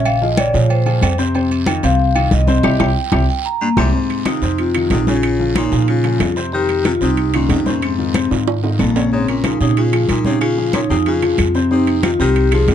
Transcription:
Already playing: A#1 C#3 C#4 C#5
0.05 F5, high conga, low agogo, long guiro, claves
0.22 F3 F4 G#4 D#5, high conga
0.37 C#3 C#4 C#5 D5, high conga, low agogo, short guiro, claves
0.54 A#2 F3 F4 G#4 C#5, high conga, short guiro
0.70 C5, high conga, low agogo, long guiro
0.85 F3 F4 G#4, high conga, low agogo
1.02 F2, high conga, low timbale, low agogo, short guiro, claves
1.18 C3 C4 C5, short guiro
1.35 C3 C4 C5, high conga, low agogo, long guiro
1.51 high conga, low agogo
1.66 D#3 D#4 F4, high conga, low agogo, short guiro, claves
1.83 C2 C3 C4 C5 F5, high conga, low agogo, short guiro
1.99 high conga, long guiro
2.15 D#3 D#4 F4, high conga, low agogo, claves
2.31 C2 D#5, high conga, short guiro
2.47 C3 C4 C5, high conga, short guiro
2.63 C2 C4 E4 G4, high conga, high timbale, long guiro, claves
2.79 C2 C4 E4 G4 G5, high conga, high timbale, long guiro, claves
3.12 C2 C4 E4 G4, high conga, high timbale, long guiro, claves
3.30 G5
3.46 A#5
3.61 G2 A#3
3.77 C2 G#2 C4 E4 G4, high conga, high timbale, long guiro, claves
3.93 C3 C4 C5, high conga, long guiro
4.10 high conga, high timbale
4.25 C3 D#3 D#4 F4, high conga, high timbale, short guiro, claves
4.42 F2 C3 C4 C5, high conga, short guiro
4.58 C3 F4, high conga, high timbale, long guiro
4.75 D#3 D#4 F4, high conga, high timbale, claves
4.90 A#1 C3 D#4, high conga, high timbale, low timbale, short guiro
5.07 C#3 C#4 F4 C#5, high conga, short guiro
5.23 high conga, high timbale, long guiro, claves
5.40 F3 F4 G#4, high conga
5.56 A#2 C#3 C#4 D#4 C#5, high conga, high timbale, short guiro, claves
5.72 A#2 F3 F4 G#4, high conga, short guiro
5.88 C#3 F4, high conga, high timbale, long guiro
6.04 F3 F4 G#4, high conga, high timbale
6.20 F2, high conga, high timbale, low timbale, short guiro, claves
6.36 C3 C4 C5, short guiro
6.52 C3 D#3 C4 G4 C5, high conga, long guiro
6.69 high conga, high timbale
6.85 C3 D#3 D#4 F4, high conga, high timbale, short guiro, claves
7.01 C2 C3 C4 D#4 C5, high conga, short guiro
7.17 high conga, high timbale, long guiro
7.33 A#2 D#3 C#4 D#4 F4, high conga, high timbale, claves
7.49 F2 C3 D#4, high conga, high timbale, low timbale, short guiro
7.66 A#2 C3 C4 C#4 C5, high conga, short guiro
7.82 G#2 C4, high conga, high timbale, long guiro, claves
7.98 D#3 D#4 F4, high conga
8.14 C3 C4 C5, high conga, high timbale, short guiro, claves
8.31 G#2 D#3 D#4 F4, high conga, high timbale, short guiro
8.47 high conga, high timbale, long guiro
8.63 D#3 D#4 F4, high conga, low timbale
8.79 A#1 F2 A#3, high conga, low timbale, short guiro, claves
8.95 C#3 C#4 C#5, low timbale, short guiro
9.12 G#2 C#3 C4 C#4 C#5, high conga, long guiro
9.28 A#2 C#4, high conga, high timbale
9.44 A#2 F3 D#4 F4 G#4, high conga, high timbale, short guiro, claves
9.60 A#2 C3 C#3 C#4 D#4 C#5, high conga, short guiro
9.76 C#3 F4, high conga, high timbale, long guiro
9.92 F3 F4 G#4, high conga, high timbale, claves
10.09 A#2 D#4, high conga, high timbale, short guiro
10.25 C3 C#3 C#4 D#4 C#5, high conga, short guiro
10.41 C#3 F4, high conga, high timbale, long guiro, claves
10.57 F3 F4 G#4, high conga
10.73 A#2 C#3 C#4 D#4 C#5, high conga, high timbale, short guiro, claves
10.90 F2 C3 F3 D#4 F4 G#4, high conga, short guiro
11.06 C#3 F4, high conga, high timbale, long guiro
11.22 F3 F4 G#4, high conga, high timbale
11.38 F2, high conga, high timbale, short guiro, claves
11.55 C3 C4 C5, short guiro
11.70 C3 C4 D#4 C5, high conga, long guiro
11.87 high conga, high timbale
12.03 C3 D#3 D#4 F4, high conga, high timbale, short guiro, claves
12.19 C2 C3 D#3 C4 G4 C5, high conga, short guiro
12.36 high conga, high timbale, long guiro
12.51 D#3 F3 D#4 F4 G#4, high conga, high timbale, claves
12.68 F2 C3 F4, high conga, high timbale, low timbale, short guiro

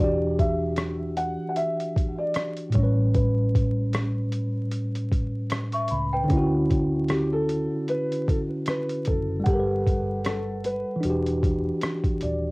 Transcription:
Already playing: E3 D4
0.00 E1 F#4 G4 D5
0.39 E5, kick, closed hi-hat
0.77 cross-stick, closed hi-hat
1.17 F#5, closed hi-hat
1.49 F#5
1.56 E5, closed hi-hat
1.80 closed hi-hat
1.96 kick, closed hi-hat
2.18 D5
2.34 cross-stick, closed hi-hat
2.57 closed hi-hat
2.70 A2, closed hi-hat
2.74 A1 G3 C#5, kick
2.79 C#4
2.83 B4
3.14 B4, kick, closed hi-hat
3.55 kick, closed hi-hat
3.93 cross-stick, closed hi-hat
4.32 closed hi-hat
4.71 closed hi-hat
4.95 closed hi-hat
5.12 kick, closed hi-hat
5.50 cross-stick, closed hi-hat
5.72 E5 C#6, closed hi-hat
5.88 B5, closed hi-hat
5.92 C#2
6.13 B4 G5
6.24 D3
6.28 D2 C#4, kick, closed hi-hat
6.33 E4
6.37 F#4
6.71 kick, closed hi-hat
7.08 G4, cross-stick, closed hi-hat
7.32 A4
7.49 closed hi-hat
7.88 B4, closed hi-hat
8.12 closed hi-hat
8.28 A4, kick, closed hi-hat
8.66 B4, cross-stick, closed hi-hat
8.89 closed hi-hat
9.05 F#1 A4, kick, closed hi-hat
9.40 G3
9.44 G1 G4 F#5, kick, closed hi-hat
9.49 A4
9.54 A#4
9.60 B4
9.87 kick, closed hi-hat
10.25 A4, cross-stick, closed hi-hat
10.64 B4, closed hi-hat
10.96 E3
11.01 E1 D4, closed hi-hat
11.05 F#4
11.10 G4
11.26 closed hi-hat
11.43 kick, closed hi-hat
11.81 cross-stick, closed hi-hat
12.04 kick, closed hi-hat
12.21 D#1 D5, closed hi-hat

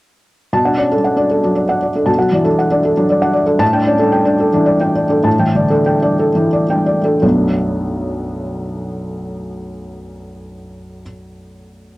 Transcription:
0.53 B2 A5
0.65 D4 F#5
0.78 C#4 D5
0.91 D4 A4
1.04 F#5
1.17 D4 D5
1.31 A4
1.44 F#3 D4
1.55 D5
1.69 D4 F#5
1.82 D5
1.95 D4 A4
2.06 B2 A5
2.18 F#3 F#5
2.32 E3 D5
2.44 D4 A4
2.58 F#5
2.71 D4 D5
2.85 A4
2.97 F#3 D4
3.10 D5
3.22 D4 F#5
3.33 D5
3.46 D4 A4
3.59 A2 A5
3.73 D4 G5
3.87 C#4 D5
3.99 D4 A4
4.12 G5
4.25 D4 D5
4.40 A4
4.53 E3 D4
4.66 D5
4.81 D4 G5
4.95 D5
5.09 D4 A4
5.23 A2 A5
5.39 E3 G5
5.55 D3 D5
5.70 D4 A4
5.86 G5
6.02 D4 D5
6.19 A4
6.35 E3 D4
6.53 D5
6.70 D4 G5
6.86 D5
7.04 D4 A4
7.22 B1 F#2 F#3 A3 B3 D4

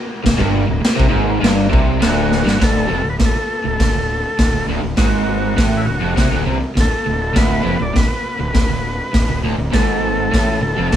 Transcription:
0.24 D1 D2, kick, snare, crash
0.38 G1 G2, kick
0.67 D1 D2
0.81 muted overdriven electric guitar stroke, snare, crash
0.85 muted fingered electric bass stroke
0.96 C3, kick
1.00 C2
1.09 G#2
1.15 G#1
1.41 G1 G2, snare, crash
1.70 C2 C3, kick
2.00 D1 D2 F#4, snare, crash
2.32 snare
2.45 G1 G2, snare
2.50 F#4
2.59 D1 D2, kick, snare, open hi-hat
2.63 A4
2.89 F1 F2
3.04 D1 D2
3.10 B4
3.19 D1 D2, kick, snare, open hi-hat
3.25 A4
3.35 muted overdriven electric guitar stroke, muted fingered electric bass stroke
3.64 D1 D2 A4
3.79 D1 D2, kick, snare, open hi-hat
3.94 D1 D2
4.38 D1 D2, kick, snare, open hi-hat
4.53 D1 D2
4.68 D1 D2
4.83 D1 D2
4.97 G#1 G#2 F#4, kick, snare, open hi-hat
5.57 A1 A2, kick, snare, open hi-hat
5.77 E4
5.85 D1 D2 F#4
6.00 F1 F2
6.16 C2 C3, kick, snare, open hi-hat
6.32 D1 D2
6.46 C2 C3
6.61 muted overdriven electric guitar stroke, muted fingered electric bass stroke
6.75 D1 D2, kick, snare, open hi-hat
6.80 A4
6.92 muted overdriven electric guitar stroke, muted fingered electric bass stroke
7.06 D1 D2
7.22 A4
7.34 D1 D2 B4, kick, snare, open hi-hat
7.64 F1 F2
7.80 D1 D2 D5
7.94 D1 D2 B4, kick, snare, open hi-hat
8.09 muted overdriven electric guitar stroke, muted fingered electric bass stroke
8.39 D1 D2 B4
8.54 D1 D2, kick, snare, open hi-hat
8.70 D1 D2
9.13 D1 D2, kick, snare, open hi-hat
9.29 D1 D2
9.44 D1 D2
9.57 D1 D2
9.72 G#1 G#2 A4, kick, snare, open hi-hat
10.32 A1 A2, kick, snare, open hi-hat
10.62 D1 D2 A4
10.77 F1 F2
10.92 C3, kick, snare, open hi-hat

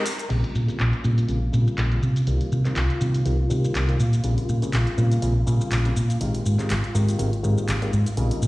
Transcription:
Already playing: A#4 A#5
0.06 open hi-hat, shaker
0.19 closed hi-hat, shaker
0.29 A#1 C#3 G3 A#3 C4 F4 F5, closed hi-hat, crash, shaker
0.44 closed hi-hat
0.55 A#2, shaker
0.68 C#3 G3 A#3 C4 F4, muted fingered electric bass stroke, closed hi-hat, shaker
0.79 A#1, clap, closed hi-hat, shaker
0.93 closed hi-hat
1.04 A#2 C#3 G3 A#3 C4 F4, shaker
1.18 closed hi-hat, shaker
1.28 A#1 C#3 G3 A#3 C4 F4, closed hi-hat, shaker
1.52 A#2 C#3 G3 A#3 C4 F4, shaker
1.67 muted fingered electric bass stroke, shaker
1.78 A#1, clap, closed hi-hat, shaker
1.91 C#3 G3 A#3 C4 F4, closed hi-hat
2.02 C3, shaker
2.16 closed hi-hat, shaker
2.27 C2 D#3 G3 A#3 C4 G4, closed hi-hat, shaker
2.41 closed hi-hat
2.52 C3, shaker
2.65 D#3 G3 A#3 C4 G4, muted fingered electric bass stroke, clap, closed hi-hat, shaker
2.76 C2, clap, closed hi-hat, shaker
2.90 closed hi-hat
3.01 C3 D#3 G3 A#3 C4 G4, shaker
3.14 closed hi-hat, shaker
3.25 C2 D#3 G3 A#3 C4 G4, closed hi-hat, shaker
3.50 C3 D#3 G3 A#3 C4 G4, shaker
3.64 muted fingered electric bass stroke, shaker
3.75 C2, clap, closed hi-hat, shaker
3.89 D#3 G3 A#3 C4 G4, closed hi-hat
4.00 A#2, shaker
4.13 closed hi-hat, shaker
4.24 A#1 C#3 G3 A#3 C4 F4, closed hi-hat, shaker
4.38 closed hi-hat
4.49 A#2, shaker
4.62 C#3 G3 A#3 C4 F4, muted fingered electric bass stroke, closed hi-hat, shaker
4.73 A#1, clap, closed hi-hat, shaker
4.87 closed hi-hat
4.98 A#2 C#3 G3 A#3 C4 F4, shaker
5.12 closed hi-hat, shaker
5.22 A#1 C#3 G3 A#3 C4 F4, closed hi-hat, shaker
5.46 A#2 C#3 G3 A#3 C4 F4, shaker
5.61 muted fingered electric bass stroke, shaker
5.71 A#1, clap, closed hi-hat, shaker
5.85 C#3 G3 A#3 C4 F4, closed hi-hat
5.96 A#2, shaker
6.10 closed hi-hat, shaker
6.21 G#1 D#3 G#3 A#3 C4 G4, closed hi-hat, shaker
6.35 closed hi-hat
6.46 G#2, shaker
6.59 D#3 G#3 A#3 C4 G4, clap, closed hi-hat, shaker
6.70 G#1, clap, closed hi-hat, shaker
6.84 closed hi-hat
6.95 G#2 D#3 G#3 A#3 C4 G4, shaker
7.09 closed hi-hat, shaker
7.19 G#1 D#3 G#3 A#3 C4 G4, closed hi-hat, shaker
7.33 closed hi-hat
7.43 G#2 D#3 G#3 A#3 C4 G4, shaker
7.58 muted fingered electric bass stroke, shaker
7.68 G#1, clap, closed hi-hat, shaker
7.82 D#3 G#3 A#3 C4 G4, closed hi-hat
7.93 G#2, shaker
8.06 closed hi-hat, shaker
8.17 A#1 C#3 G3 A#3 C4 D#4 F4 D#5, closed hi-hat, shaker
8.31 closed hi-hat
8.42 A#2, shaker

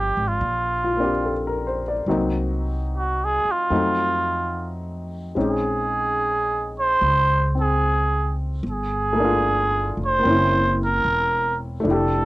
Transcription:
Already playing: G1 F3 G3 A#3 D4
0.00 G4
0.17 G#1
0.28 F4
0.41 A#1
0.84 F4
0.97 A#3 C4 D4
1.03 G4
1.25 A4
1.47 A#4
1.67 C5
1.88 D5
2.06 C2 F#3 A#3 C4 D#4
2.97 F#4
3.24 G#4
3.45 muted upright bass stroke
3.51 F4
3.70 F2 F#3 A3 C4 D#4
5.35 A#1 G#3 C4 C#4 D#4
5.43 G#4
6.80 C5
7.01 C#2
7.55 C4
7.61 G#4
8.63 G1
8.70 G#4
9.13 A3 A#3
9.20 D4
9.24 F4
9.97 F1
10.05 C5
10.19 A#3 C4
10.25 F#1 C#4
10.30 E4
10.85 A#4
11.05 E1
11.80 A3 D4
11.85 F1 E4
11.91 G4 A4

